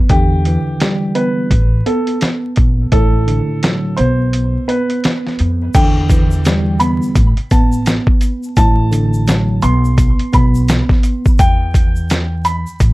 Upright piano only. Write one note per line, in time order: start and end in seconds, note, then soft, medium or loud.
0.10 1.12 G4 loud
1.15 1.82 B4 medium
1.86 2.18 A4 medium
2.92 3.94 A4 loud
3.97 4.64 C5 medium
4.68 5.00 B4 medium
5.75 6.77 G5 medium
6.80 7.47 B5 medium
7.51 7.83 A5 medium
8.57 9.59 A5 loud
9.63 10.29 C6 medium
10.34 10.66 B5 medium
11.39 12.41 G5 loud
12.45 12.93 B5 medium